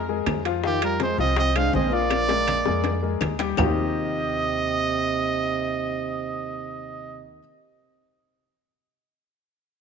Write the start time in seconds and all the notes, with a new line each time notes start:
Already playing: F2
0.08 G#3 G#4 A#4, high conga
0.26 F2, high bongo, low bongo, high conga, high timbale, low timbale, claves
0.45 F3 F4 F5, high bongo, high timbale
0.63 D#3 F3 F4 G4 F5, high bongo, high conga
0.82 G3 A#4, high bongo, high conga, high timbale, claves
1.00 G#3 G#4 C5, high bongo, high conga, high timbale
1.18 C2 F3 C4 F4 D#5 F5, high bongo, high conga
1.36 C4 D#5, high bongo, high conga, high timbale
1.56 G#3 D4 G#4 C5 F5, high conga, high timbale, claves
1.73 A#1 G#3 C4 G#4 C5 D#5, high bongo, low bongo, high conga
1.92 F3 A#3 F4 D5 F5, high bongo, high conga
2.10 high bongo, high conga, high timbale, claves
2.29 G#3 G#4 A#4, high bongo, high conga, high timbale
2.47 high conga, high timbale, claves
2.65 F2 G#3 G#4 A#4, high bongo, high conga
2.84 low bongo, high conga, high timbale
3.02 G#3 G#4 A#4, high conga
3.21 D#2, low bongo, high conga, high timbale, claves
3.39 G3 G4 G5, low bongo, high timbale
3.57 D#2 C3 D#3 A#3 C4 D#4 F4 G4 D#5, low bongo, low conga, low timbale, claves